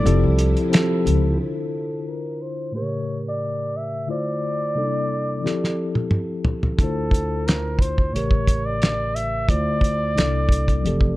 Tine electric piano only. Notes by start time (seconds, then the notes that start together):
0.04 F3 C4 E4 G4 A4
0.70 F3 C4 E4 G4 A4
1.36 D3 D4 E4
1.41 F4 C5
2.72 A2 A3 A#3
2.76 G4 A#4
2.81 C#3
4.07 D3 A3 E4 F4 C5
4.75 C3 G3 A#3 D4 D#4 A4
4.83 E4
5.41 F3 C4 E4 G4
5.47 A4
6.77 D3 D4 E4
6.82 F4 C5
8.11 A2 C#3 A3
8.16 G4 A#4
9.48 D3 A3 E4 F4 C5
10.14 C3 G3 A#3 D4 E4 A4
10.82 E3 F3 C4
10.86 G4 A4